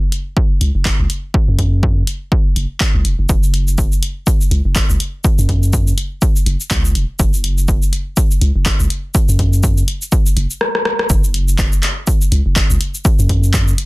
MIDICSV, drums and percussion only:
0, 0, Header, 1, 2, 480
1, 0, Start_track
1, 0, Tempo, 487805
1, 1321, Time_signature, 4, 2, 24, 8
1, 13634, End_track
2, 0, Start_track
2, 0, Title_t, "Drums"
2, 120, Note_on_c, 9, 42, 92
2, 218, Note_off_c, 9, 42, 0
2, 361, Note_on_c, 9, 36, 116
2, 459, Note_off_c, 9, 36, 0
2, 600, Note_on_c, 9, 42, 93
2, 699, Note_off_c, 9, 42, 0
2, 840, Note_on_c, 9, 39, 99
2, 841, Note_on_c, 9, 36, 120
2, 939, Note_off_c, 9, 36, 0
2, 939, Note_off_c, 9, 39, 0
2, 1080, Note_on_c, 9, 42, 99
2, 1179, Note_off_c, 9, 42, 0
2, 1321, Note_on_c, 9, 36, 125
2, 1419, Note_off_c, 9, 36, 0
2, 1561, Note_on_c, 9, 36, 58
2, 1561, Note_on_c, 9, 42, 91
2, 1659, Note_off_c, 9, 36, 0
2, 1659, Note_off_c, 9, 42, 0
2, 1801, Note_on_c, 9, 36, 118
2, 1899, Note_off_c, 9, 36, 0
2, 2040, Note_on_c, 9, 42, 97
2, 2138, Note_off_c, 9, 42, 0
2, 2281, Note_on_c, 9, 36, 122
2, 2379, Note_off_c, 9, 36, 0
2, 2521, Note_on_c, 9, 42, 95
2, 2619, Note_off_c, 9, 42, 0
2, 2760, Note_on_c, 9, 39, 97
2, 2761, Note_on_c, 9, 36, 121
2, 2859, Note_off_c, 9, 36, 0
2, 2859, Note_off_c, 9, 39, 0
2, 3000, Note_on_c, 9, 42, 92
2, 3098, Note_off_c, 9, 42, 0
2, 3241, Note_on_c, 9, 36, 120
2, 3241, Note_on_c, 9, 69, 58
2, 3339, Note_off_c, 9, 36, 0
2, 3339, Note_off_c, 9, 69, 0
2, 3378, Note_on_c, 9, 69, 39
2, 3477, Note_off_c, 9, 69, 0
2, 3481, Note_on_c, 9, 42, 91
2, 3579, Note_off_c, 9, 42, 0
2, 3619, Note_on_c, 9, 69, 28
2, 3717, Note_off_c, 9, 69, 0
2, 3721, Note_on_c, 9, 36, 122
2, 3722, Note_on_c, 9, 69, 57
2, 3819, Note_off_c, 9, 36, 0
2, 3820, Note_off_c, 9, 69, 0
2, 3859, Note_on_c, 9, 69, 39
2, 3957, Note_off_c, 9, 69, 0
2, 3961, Note_on_c, 9, 42, 92
2, 4060, Note_off_c, 9, 42, 0
2, 4201, Note_on_c, 9, 36, 115
2, 4202, Note_on_c, 9, 69, 59
2, 4299, Note_off_c, 9, 36, 0
2, 4300, Note_off_c, 9, 69, 0
2, 4339, Note_on_c, 9, 69, 42
2, 4438, Note_off_c, 9, 69, 0
2, 4441, Note_on_c, 9, 42, 82
2, 4539, Note_off_c, 9, 42, 0
2, 4681, Note_on_c, 9, 36, 116
2, 4681, Note_on_c, 9, 39, 100
2, 4681, Note_on_c, 9, 69, 57
2, 4779, Note_off_c, 9, 36, 0
2, 4780, Note_off_c, 9, 39, 0
2, 4780, Note_off_c, 9, 69, 0
2, 4818, Note_on_c, 9, 69, 41
2, 4917, Note_off_c, 9, 69, 0
2, 4921, Note_on_c, 9, 42, 88
2, 5020, Note_off_c, 9, 42, 0
2, 5161, Note_on_c, 9, 36, 116
2, 5161, Note_on_c, 9, 69, 62
2, 5259, Note_off_c, 9, 36, 0
2, 5259, Note_off_c, 9, 69, 0
2, 5299, Note_on_c, 9, 69, 40
2, 5397, Note_off_c, 9, 69, 0
2, 5401, Note_on_c, 9, 36, 54
2, 5401, Note_on_c, 9, 42, 88
2, 5499, Note_off_c, 9, 36, 0
2, 5500, Note_off_c, 9, 42, 0
2, 5539, Note_on_c, 9, 69, 27
2, 5637, Note_off_c, 9, 69, 0
2, 5641, Note_on_c, 9, 36, 107
2, 5641, Note_on_c, 9, 69, 61
2, 5739, Note_off_c, 9, 36, 0
2, 5740, Note_off_c, 9, 69, 0
2, 5779, Note_on_c, 9, 69, 41
2, 5877, Note_off_c, 9, 69, 0
2, 5881, Note_on_c, 9, 42, 84
2, 5979, Note_off_c, 9, 42, 0
2, 6121, Note_on_c, 9, 36, 112
2, 6121, Note_on_c, 9, 69, 61
2, 6219, Note_off_c, 9, 36, 0
2, 6219, Note_off_c, 9, 69, 0
2, 6259, Note_on_c, 9, 69, 41
2, 6357, Note_off_c, 9, 69, 0
2, 6360, Note_on_c, 9, 42, 86
2, 6459, Note_off_c, 9, 42, 0
2, 6499, Note_on_c, 9, 69, 28
2, 6597, Note_off_c, 9, 69, 0
2, 6600, Note_on_c, 9, 36, 110
2, 6601, Note_on_c, 9, 39, 92
2, 6601, Note_on_c, 9, 69, 58
2, 6699, Note_off_c, 9, 36, 0
2, 6700, Note_off_c, 9, 39, 0
2, 6700, Note_off_c, 9, 69, 0
2, 6739, Note_on_c, 9, 69, 43
2, 6837, Note_off_c, 9, 69, 0
2, 6841, Note_on_c, 9, 42, 88
2, 6939, Note_off_c, 9, 42, 0
2, 7080, Note_on_c, 9, 36, 116
2, 7081, Note_on_c, 9, 69, 66
2, 7179, Note_off_c, 9, 36, 0
2, 7179, Note_off_c, 9, 69, 0
2, 7219, Note_on_c, 9, 69, 44
2, 7317, Note_off_c, 9, 69, 0
2, 7321, Note_on_c, 9, 42, 85
2, 7419, Note_off_c, 9, 42, 0
2, 7458, Note_on_c, 9, 69, 29
2, 7557, Note_off_c, 9, 69, 0
2, 7560, Note_on_c, 9, 36, 109
2, 7561, Note_on_c, 9, 69, 65
2, 7659, Note_off_c, 9, 36, 0
2, 7659, Note_off_c, 9, 69, 0
2, 7699, Note_on_c, 9, 69, 40
2, 7797, Note_off_c, 9, 69, 0
2, 7801, Note_on_c, 9, 42, 85
2, 7899, Note_off_c, 9, 42, 0
2, 8040, Note_on_c, 9, 69, 62
2, 8041, Note_on_c, 9, 36, 109
2, 8138, Note_off_c, 9, 69, 0
2, 8139, Note_off_c, 9, 36, 0
2, 8178, Note_on_c, 9, 69, 43
2, 8276, Note_off_c, 9, 69, 0
2, 8280, Note_on_c, 9, 42, 79
2, 8378, Note_off_c, 9, 42, 0
2, 8520, Note_on_c, 9, 39, 98
2, 8520, Note_on_c, 9, 69, 64
2, 8521, Note_on_c, 9, 36, 110
2, 8618, Note_off_c, 9, 39, 0
2, 8618, Note_off_c, 9, 69, 0
2, 8619, Note_off_c, 9, 36, 0
2, 8658, Note_on_c, 9, 69, 43
2, 8757, Note_off_c, 9, 69, 0
2, 8761, Note_on_c, 9, 42, 89
2, 8859, Note_off_c, 9, 42, 0
2, 9001, Note_on_c, 9, 36, 114
2, 9001, Note_on_c, 9, 69, 64
2, 9099, Note_off_c, 9, 36, 0
2, 9099, Note_off_c, 9, 69, 0
2, 9138, Note_on_c, 9, 69, 44
2, 9237, Note_off_c, 9, 69, 0
2, 9240, Note_on_c, 9, 42, 91
2, 9241, Note_on_c, 9, 36, 53
2, 9339, Note_off_c, 9, 36, 0
2, 9339, Note_off_c, 9, 42, 0
2, 9378, Note_on_c, 9, 69, 29
2, 9477, Note_off_c, 9, 69, 0
2, 9481, Note_on_c, 9, 36, 113
2, 9481, Note_on_c, 9, 69, 66
2, 9579, Note_off_c, 9, 36, 0
2, 9579, Note_off_c, 9, 69, 0
2, 9618, Note_on_c, 9, 69, 41
2, 9717, Note_off_c, 9, 69, 0
2, 9721, Note_on_c, 9, 42, 90
2, 9819, Note_off_c, 9, 42, 0
2, 9858, Note_on_c, 9, 69, 31
2, 9957, Note_off_c, 9, 69, 0
2, 9960, Note_on_c, 9, 69, 63
2, 9961, Note_on_c, 9, 36, 116
2, 10059, Note_off_c, 9, 36, 0
2, 10059, Note_off_c, 9, 69, 0
2, 10098, Note_on_c, 9, 69, 44
2, 10197, Note_off_c, 9, 69, 0
2, 10200, Note_on_c, 9, 42, 89
2, 10299, Note_off_c, 9, 42, 0
2, 10338, Note_on_c, 9, 69, 30
2, 10436, Note_off_c, 9, 69, 0
2, 10440, Note_on_c, 9, 37, 62
2, 10538, Note_off_c, 9, 37, 0
2, 10578, Note_on_c, 9, 37, 62
2, 10676, Note_off_c, 9, 37, 0
2, 10680, Note_on_c, 9, 37, 86
2, 10779, Note_off_c, 9, 37, 0
2, 10818, Note_on_c, 9, 37, 79
2, 10916, Note_off_c, 9, 37, 0
2, 10921, Note_on_c, 9, 36, 123
2, 10921, Note_on_c, 9, 69, 69
2, 11019, Note_off_c, 9, 36, 0
2, 11019, Note_off_c, 9, 69, 0
2, 11058, Note_on_c, 9, 69, 45
2, 11157, Note_off_c, 9, 69, 0
2, 11161, Note_on_c, 9, 42, 88
2, 11259, Note_off_c, 9, 42, 0
2, 11298, Note_on_c, 9, 69, 30
2, 11397, Note_off_c, 9, 69, 0
2, 11401, Note_on_c, 9, 36, 117
2, 11401, Note_on_c, 9, 39, 93
2, 11401, Note_on_c, 9, 69, 65
2, 11499, Note_off_c, 9, 39, 0
2, 11499, Note_off_c, 9, 69, 0
2, 11500, Note_off_c, 9, 36, 0
2, 11538, Note_on_c, 9, 69, 45
2, 11637, Note_off_c, 9, 69, 0
2, 11641, Note_on_c, 9, 39, 67
2, 11641, Note_on_c, 9, 42, 90
2, 11739, Note_off_c, 9, 39, 0
2, 11739, Note_off_c, 9, 42, 0
2, 11881, Note_on_c, 9, 36, 123
2, 11881, Note_on_c, 9, 69, 67
2, 11979, Note_off_c, 9, 36, 0
2, 11979, Note_off_c, 9, 69, 0
2, 12019, Note_on_c, 9, 69, 45
2, 12118, Note_off_c, 9, 69, 0
2, 12122, Note_on_c, 9, 42, 88
2, 12220, Note_off_c, 9, 42, 0
2, 12361, Note_on_c, 9, 36, 118
2, 12361, Note_on_c, 9, 39, 99
2, 12361, Note_on_c, 9, 69, 63
2, 12460, Note_off_c, 9, 36, 0
2, 12460, Note_off_c, 9, 39, 0
2, 12460, Note_off_c, 9, 69, 0
2, 12499, Note_on_c, 9, 69, 44
2, 12598, Note_off_c, 9, 69, 0
2, 12601, Note_on_c, 9, 42, 96
2, 12700, Note_off_c, 9, 42, 0
2, 12739, Note_on_c, 9, 69, 30
2, 12838, Note_off_c, 9, 69, 0
2, 12841, Note_on_c, 9, 36, 126
2, 12842, Note_on_c, 9, 69, 66
2, 12940, Note_off_c, 9, 36, 0
2, 12940, Note_off_c, 9, 69, 0
2, 12979, Note_on_c, 9, 69, 43
2, 13078, Note_off_c, 9, 69, 0
2, 13081, Note_on_c, 9, 36, 63
2, 13081, Note_on_c, 9, 42, 91
2, 13180, Note_off_c, 9, 36, 0
2, 13180, Note_off_c, 9, 42, 0
2, 13219, Note_on_c, 9, 69, 29
2, 13318, Note_off_c, 9, 69, 0
2, 13321, Note_on_c, 9, 36, 127
2, 13321, Note_on_c, 9, 39, 95
2, 13321, Note_on_c, 9, 69, 63
2, 13419, Note_off_c, 9, 39, 0
2, 13419, Note_off_c, 9, 69, 0
2, 13420, Note_off_c, 9, 36, 0
2, 13459, Note_on_c, 9, 69, 41
2, 13557, Note_off_c, 9, 69, 0
2, 13561, Note_on_c, 9, 42, 97
2, 13634, Note_off_c, 9, 42, 0
2, 13634, End_track
0, 0, End_of_file